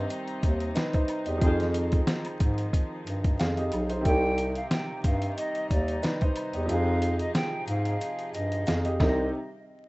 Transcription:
0.00 1.36 C3 medium
0.00 1.39 D#3 medium
0.00 1.39 G3 medium
0.00 1.37 C4 medium
0.00 4.01 C4 medium
0.00 0.72 D#4 medium
0.00 4.01 D#4 medium
0.00 0.74 G4 medium
0.10 closed hi-hat medium
0.10 maracas medium
0.28 closed hi-hat soft
0.43 0.72 D#2 medium
0.43 kick medium
0.43 closed hi-hat medium
0.43 maracas soft
0.60 closed hi-hat soft
0.75 0.93 D#4 medium
0.75 0.92 B4 medium
0.75 snare loud
0.75 closed hi-hat medium
0.75 maracas medium
0.93 1.25 D#4 medium
0.93 1.25 C5 medium
0.93 kick medium
0.93 closed hi-hat soft
1.08 closed hi-hat medium
1.08 high woodblock medium
1.08 maracas medium
1.26 1.40 E2 medium
1.26 1.58 G4 medium
1.26 1.58 D#5 medium
1.26 closed hi-hat soft
1.37 3.99 F3 medium
1.37 4.01 C4 medium
1.41 2.00 F2 loud
1.41 4.03 D#3 medium
1.41 4.03 F3 medium
1.41 3.36 D#4 medium
1.41 1.64 F4 medium
1.41 1.64 G#4 loud
1.41 3.37 G#4 medium
1.41 1.64 C5 loud
1.41 kick loud
1.41 closed hi-hat medium
1.41 maracas medium
1.60 snare soft
1.60 closed hi-hat soft
1.74 closed hi-hat medium
1.74 maracas medium
1.92 kick loud
1.92 closed hi-hat medium
2.07 snare loud
2.07 closed hi-hat medium
2.07 maracas medium
2.25 closed hi-hat soft
2.25 high woodblock medium
2.40 2.70 G#2 loud
2.40 kick loud
2.40 closed hi-hat medium
2.40 maracas medium
2.58 closed hi-hat medium
2.73 kick medium
2.73 closed hi-hat loud
2.73 maracas medium
3.07 3.36 G2 medium
3.07 closed hi-hat medium
3.07 maracas soft
3.24 kick medium
3.24 closed hi-hat soft
3.39 3.69 F2 medium
3.39 3.57 G#4 medium
3.39 3.56 F5 medium
3.39 snare loud
3.39 closed hi-hat medium
3.39 maracas medium
3.57 3.89 G4 medium
3.57 3.89 D#5 medium
3.57 closed hi-hat soft
3.72 4.02 B1 loud
3.72 closed hi-hat medium
3.72 high woodblock medium
3.72 maracas medium
3.90 4.05 D#4 medium
3.90 4.22 C5 medium
3.90 closed hi-hat medium
4.01 6.63 C3 medium
4.01 6.64 C4 medium
4.01 4.53 G5 loud
4.05 4.64 C2 loud
4.05 8.96 C3 medium
4.05 6.67 D#3 medium
4.05 6.67 G3 medium
4.05 8.96 D#4 medium
4.05 6.00 D#4 medium
4.05 6.01 G4 medium
4.05 kick loud
4.05 closed hi-hat medium
4.05 maracas medium
4.38 closed hi-hat medium
4.38 maracas medium
4.55 4.70 F5 medium
4.55 closed hi-hat medium
4.71 5.01 G5 medium
4.71 snare loud
4.71 closed hi-hat medium
4.71 maracas medium
5.04 5.34 G2 loud
5.04 5.34 F5 medium
5.04 kick loud
5.04 closed hi-hat medium
5.04 maracas medium
5.22 closed hi-hat medium
5.38 5.67 D#5 medium
5.38 closed hi-hat medium
5.38 maracas medium
5.55 closed hi-hat soft
5.70 6.00 D#2 medium
5.70 6.18 D5 medium
5.70 kick medium
5.70 closed hi-hat medium
5.70 maracas soft
5.88 closed hi-hat soft
6.02 6.20 D#4 medium
6.02 6.20 B4 medium
6.02 snare loud
6.02 closed hi-hat medium
6.02 maracas medium
6.21 6.53 D#4 medium
6.21 6.53 C5 medium
6.21 kick medium
6.21 closed hi-hat soft
6.36 closed hi-hat medium
6.36 high woodblock medium
6.36 maracas medium
6.53 6.68 E2 medium
6.53 6.86 G4 medium
6.53 6.86 D#5 medium
6.53 closed hi-hat soft
6.65 8.94 F3 medium
6.65 8.97 F3 medium
6.65 8.95 C4 medium
6.65 8.97 G#4 medium
6.69 7.28 F2 loud
6.69 8.64 D#4 medium
6.69 8.65 G#4 medium
6.69 7.17 F5 medium
6.69 closed hi-hat medium
6.69 maracas medium
7.02 closed hi-hat medium
7.02 maracas medium
7.19 7.34 D#5 medium
7.19 closed hi-hat medium
7.35 7.65 G5 medium
7.35 snare loud
7.35 closed hi-hat medium
7.35 maracas medium
7.68 7.98 G#2 loud
7.68 8.31 F5 medium
7.68 closed hi-hat medium
7.68 maracas medium
7.85 closed hi-hat medium
8.01 closed hi-hat medium
8.01 maracas medium
8.19 closed hi-hat soft
8.34 8.64 G2 medium
8.34 8.82 D#5 medium
8.34 closed hi-hat medium
8.34 maracas soft
8.52 closed hi-hat soft
8.66 8.97 F2 loud
8.66 8.84 G#4 medium
8.66 8.84 F5 medium
8.66 snare loud
8.66 closed hi-hat medium
8.66 maracas medium
8.85 8.99 G4 medium
8.85 8.99 D#5 medium
8.85 closed hi-hat soft
9.00 9.31 C2 loud
9.00 9.31 C3 medium
9.00 9.31 D#3 medium
9.00 9.31 G3 medium
9.00 9.31 C4 medium
9.00 9.31 D#4 medium
9.00 9.31 G4 medium
9.00 9.31 D#5 medium
9.00 kick loud
9.00 snare medium
9.00 high woodblock medium

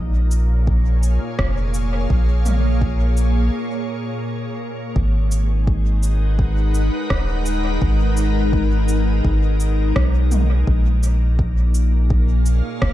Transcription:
0.00 1.19 A#1 medium
0.00 4.96 A#2 medium
0.00 4.96 A#3 medium
0.00 0.28 D#4 medium
0.00 1.54 A#4 medium
0.23 7.25 C#5 medium
0.30 6.00 G#4 medium
0.30 4.96 F5 medium
0.30 cabasa soft
0.67 kick medium
1.03 cabasa soft
1.39 2.07 F1 medium
1.39 kick loud
1.39 cross-stick medium
1.74 cabasa medium
2.10 3.50 A#1 medium
2.10 kick loud
2.46 mid tom medium
2.46 cabasa medium
2.82 kick medium
3.17 cabasa soft
4.95 6.90 G#1 medium
4.95 10.67 G#3 medium
4.95 kick loud
5.20 12.93 D#4 medium
5.32 cabasa medium
5.55 10.68 F#5 medium
5.67 kick loud
5.75 12.23 A#4 loud
5.84 10.68 B4 medium
6.03 cabasa medium
6.39 kick loud
6.75 cabasa medium
7.10 7.78 D#1 loud
7.10 kick loud
7.10 cross-stick medium
7.46 cabasa medium
7.82 9.21 G#1 medium
7.82 kick loud
8.17 cabasa medium
8.53 kick loud
8.89 cabasa medium
9.25 9.93 G#1 medium
9.25 kick loud
9.60 cabasa medium
9.96 10.64 B1 loud
9.96 kick loud
9.96 cross-stick medium
10.32 mid tom medium
10.32 cabasa medium
10.67 12.62 A#1 medium
10.67 12.93 A#2 medium
10.67 kick loud
10.96 12.93 A#3 medium
11.03 cabasa medium
11.39 kick loud
11.56 12.93 G#4 medium
11.75 cabasa medium
11.81 12.93 F5 medium
12.03 12.93 C#5 medium
12.10 kick loud
12.46 cabasa medium
12.82 12.93 F1 loud
12.82 kick loud
12.82 cross-stick medium

